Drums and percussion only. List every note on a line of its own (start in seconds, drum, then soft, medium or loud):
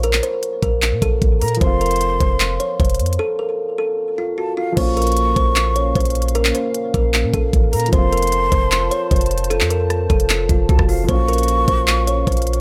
0.03 closed hi-hat medium
0.13 clap loud
0.23 closed hi-hat medium
0.43 closed hi-hat medium
0.63 kick loud
0.63 closed hi-hat medium
0.82 clap loud
0.82 closed hi-hat medium
1.02 kick medium
1.02 closed hi-hat medium
1.22 kick medium
1.22 closed hi-hat medium
1.42 closed hi-hat medium
1.42 open hi-hat medium
1.48 closed hi-hat medium
1.55 closed hi-hat medium
1.61 kick loud
1.61 closed hi-hat medium
1.81 closed hi-hat medium
1.86 closed hi-hat medium
1.91 closed hi-hat medium
1.96 closed hi-hat medium
2.01 closed hi-hat medium
2.21 kick loud
2.21 closed hi-hat medium
2.40 clap loud
2.40 closed hi-hat medium
2.60 closed hi-hat medium
2.80 kick medium
2.80 closed hi-hat medium
2.85 closed hi-hat medium
2.90 closed hi-hat medium
2.95 closed hi-hat medium
3.00 closed hi-hat medium
3.06 closed hi-hat medium
3.13 closed hi-hat medium
4.77 kick loud
4.77 closed hi-hat medium
4.77 crash loud
4.97 closed hi-hat medium
5.02 closed hi-hat medium
5.07 closed hi-hat medium
5.12 closed hi-hat medium
5.17 closed hi-hat medium
5.36 kick loud
5.36 closed hi-hat medium
5.56 clap loud
5.56 closed hi-hat medium
5.76 closed hi-hat medium
5.95 kick loud
5.95 closed hi-hat medium
6.00 closed hi-hat medium
6.05 closed hi-hat medium
6.10 closed hi-hat medium
6.15 closed hi-hat medium
6.22 closed hi-hat medium
6.28 closed hi-hat medium
6.35 closed hi-hat medium
6.45 clap loud
6.55 closed hi-hat medium
6.74 closed hi-hat medium
6.94 kick loud
6.94 closed hi-hat medium
7.14 clap loud
7.14 closed hi-hat medium
7.34 kick loud
7.34 closed hi-hat medium
7.53 kick loud
7.53 closed hi-hat medium
7.73 closed hi-hat medium
7.73 open hi-hat medium
7.80 closed hi-hat medium
7.86 closed hi-hat medium
7.93 kick loud
7.93 closed hi-hat medium
8.13 closed hi-hat medium
8.17 closed hi-hat medium
8.22 closed hi-hat medium
8.27 closed hi-hat medium
8.32 closed hi-hat medium
8.52 kick loud
8.52 closed hi-hat medium
8.72 clap loud
8.72 closed hi-hat medium
8.91 closed hi-hat medium
9.11 kick loud
9.11 closed hi-hat medium
9.16 closed hi-hat medium
9.21 closed hi-hat medium
9.26 closed hi-hat medium
9.31 closed hi-hat medium
9.38 closed hi-hat medium
9.44 closed hi-hat medium
9.51 closed hi-hat medium
9.61 clap loud
9.70 closed hi-hat medium
9.90 cross-stick medium
9.90 closed hi-hat medium
10.10 kick loud
10.10 closed hi-hat soft
10.20 closed hi-hat medium
10.30 clap loud
10.30 closed hi-hat medium
10.49 kick medium
10.49 closed hi-hat medium
10.69 kick loud
10.69 closed hi-hat medium
10.79 kick medium
10.79 cross-stick loud
10.89 open hi-hat medium
11.09 kick loud
11.09 closed hi-hat medium
11.28 closed hi-hat medium
11.33 closed hi-hat medium
11.38 closed hi-hat medium
11.43 closed hi-hat medium
11.48 closed hi-hat medium
11.68 kick loud
11.68 closed hi-hat medium
11.88 clap loud
11.88 closed hi-hat medium
12.07 closed hi-hat medium
12.27 kick loud
12.27 closed hi-hat medium
12.32 closed hi-hat medium
12.37 closed hi-hat medium
12.42 closed hi-hat medium
12.47 closed hi-hat medium
12.53 closed hi-hat medium